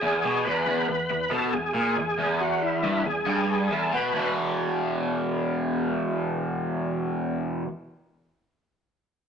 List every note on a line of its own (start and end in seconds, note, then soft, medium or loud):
0.00 0.23 E2 loud
0.00 0.47 G#4 loud
0.23 0.44 B2 medium
0.45 0.65 E2 loud
0.45 0.87 B4 loud
0.66 0.88 E2 loud
0.88 1.06 E2 medium
0.88 1.33 B4 loud
1.10 1.27 E2 medium
1.31 1.52 B2 loud
1.31 1.54 A4 loud
1.53 1.71 E2 medium
1.53 1.73 G#4 medium
1.74 1.96 A#2 loud
1.74 2.42 G#4 loud
1.96 2.14 E2 medium
2.18 2.83 E2 loud
2.40 2.63 F#4 medium
2.62 3.07 E4 medium
2.83 3.04 G2 loud
3.05 3.22 E2 medium
3.05 3.73 G#4 loud
3.26 3.69 G2 loud
3.71 3.92 E2 medium
3.71 3.94 A4 medium
3.92 4.13 B2 loud
3.92 4.34 B4 medium
4.13 7.63 E2 loud
4.13 7.65 B2 loud
4.18 7.68 E3 loud